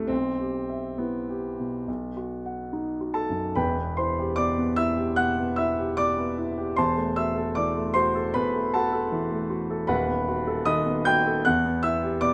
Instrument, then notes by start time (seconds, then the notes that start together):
grand piano
Already playing: C2 C3 A3 D4 E4 A4 E5
0.08 B1 C4
0.40 G4
0.69 E5
0.98 B3 E4
1.29 G4
1.59 B2
1.88 B1
2.17 F#4
2.46 F#5
2.73 D#4
3.01 F#4
3.14 A4 A5
3.30 F#2
3.55 E1 E2 B4 G5 B5
3.77 B3
3.97 E4 C5 C6
4.19 G4
4.36 B2 D5 D6
4.58 B3
4.76 E4 E5 E6
4.97 G4
5.16 B2 F#5 F#6
5.38 B3
5.56 E4 E5 E6
5.78 G4
5.97 B2 D5 D6
6.17 B3
6.38 E4
6.57 G4
6.76 E1 E2 C5 A5 C6
6.97 A3
7.16 F#4 E5 E6
7.37 A4
7.55 E3 D5 D6
7.77 A3
7.94 F#4 C5 C6
8.15 A4
8.34 E2 B4 B5
8.55 A3
8.74 F#4 A4 F#5 A5
8.92 A4
9.12 E3
9.31 A3
9.50 F#4
9.70 A4
9.87 D#1 D#2 B4 F#5 B5
10.08 B3
10.28 F#4
10.47 A4
10.65 D#3 D#5 B5 D#6
10.86 B3
11.05 F#4 G5 G6
11.26 A4
11.45 E2 F#5 F#6
11.65 B3
11.83 E4 E5 E6
12.03 G4
12.21 B2 D5 D6